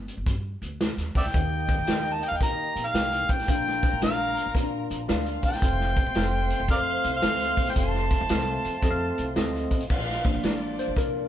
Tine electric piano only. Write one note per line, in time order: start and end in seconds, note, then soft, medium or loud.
1.34 2.19 D#3 medium
1.34 1.79 D#4 medium
1.34 1.80 A#4 medium
1.34 1.43 F#5 medium
1.41 1.83 G5 medium
1.88 2.33 D#4 medium
1.88 2.33 A#4 medium
1.88 2.33 G5 medium
2.41 2.86 D#4 medium
2.41 2.87 A#4 medium
2.41 2.87 G5 medium
2.94 3.40 D#4 medium
2.94 3.40 A#4 medium
2.94 3.40 G5 medium
3.49 4.33 A#2 medium
3.49 3.94 D4 medium
3.49 3.94 A#4 medium
3.49 3.94 F5 medium
4.02 4.47 D4 medium
4.02 4.47 A#4 medium
4.02 4.47 F5 medium
4.55 4.64 C4 medium
4.55 5.00 A#4 medium
4.55 5.00 F5 medium
4.61 5.03 D4 medium
5.08 5.54 D4 medium
5.08 5.54 A#4 medium
5.08 5.54 F5 loud
5.63 6.08 C4 medium
5.63 6.07 A4 medium
5.63 6.08 F5 medium
6.16 6.61 C4 medium
6.16 6.61 A4 medium
6.16 6.61 F5 medium
6.70 7.15 C4 medium
6.70 7.15 A4 medium
6.70 7.15 F5 medium
7.23 7.68 C4 medium
7.23 7.68 A4 medium
7.23 7.68 F5 medium
7.77 8.22 C4 medium
7.77 8.22 A4 medium
7.77 8.22 F5 medium
8.30 8.75 C4 medium
8.30 8.75 A4 medium
8.30 8.75 F5 medium
8.83 9.28 C4 medium
8.83 9.28 A4 medium
8.83 8.92 D#5 medium
8.90 9.32 F5 loud
9.37 9.82 C4 medium
9.37 9.82 A4 medium
9.37 9.82 D#5 loud
10.24 11.28 F3 medium
10.24 11.28 A#3 medium
10.24 11.28 D4 medium
10.79 10.96 C5 loud
10.98 11.28 A#4 loud